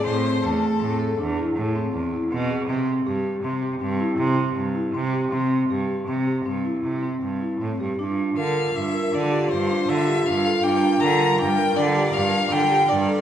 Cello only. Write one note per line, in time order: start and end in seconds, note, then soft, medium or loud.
0.04 0.35 A2 medium
0.43 0.73 E2 medium
0.81 1.11 A2 medium
1.18 1.49 E2 loud
1.56 1.86 A2 medium
1.93 2.23 E2 medium
2.31 2.61 B2 loud
2.68 2.99 C3 medium
3.05 3.36 G2 medium
3.43 3.74 C3 medium
3.81 4.11 G2 medium
4.18 4.49 C3 medium
4.56 4.87 G2 medium
4.94 5.24 C3 medium
5.31 5.62 C3 medium
5.69 6.00 G2 medium
6.08 6.38 C3 medium
6.45 6.76 G2 medium
6.83 7.14 C3 medium
7.22 7.53 G2 medium
7.61 7.78 A2 medium
7.80 7.97 G2 medium
7.99 8.30 G2 medium
8.37 8.68 D3 medium
8.75 9.06 G2 medium
9.13 9.44 D3 medium
9.52 9.82 G2 medium
9.89 10.19 D3 medium
10.26 10.57 G2 medium
10.63 10.94 G2 medium
11.01 11.32 D3 medium
11.39 11.70 G2 medium
11.76 12.07 D3 medium
12.15 12.45 G2 medium
12.51 12.82 D3 medium
12.89 13.20 G2 medium